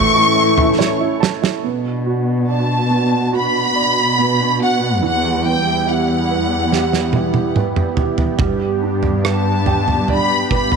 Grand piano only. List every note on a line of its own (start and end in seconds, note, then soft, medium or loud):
0.00 1.60 A3 medium
0.15 0.57 E4 medium
0.36 1.59 E5 medium
0.58 0.99 E4 soft
0.79 1.61 C#5 medium
1.01 1.40 E4 medium
1.20 1.62 A5 medium
1.42 1.63 E4 medium
1.64 2.88 B3 medium
2.06 3.31 F#4 soft
2.50 3.74 D5 soft
2.90 4.17 B3 soft
3.33 4.60 F#4 medium
3.75 4.98 D5 soft
4.19 5.00 B3 soft
4.62 5.02 F#4 medium
5.03 8.36 E3 medium
5.45 7.10 B3 soft
5.86 7.14 E4 soft
6.31 7.55 B4 soft
6.73 7.98 G4 medium
7.15 8.37 E4 soft
7.57 8.38 B4 medium
7.99 8.39 G4 medium
8.41 10.76 G3 medium
8.83 10.48 D4 soft
9.24 10.50 B4 soft
9.67 10.76 G5 medium
10.10 10.76 D5 medium
10.51 10.76 B4 medium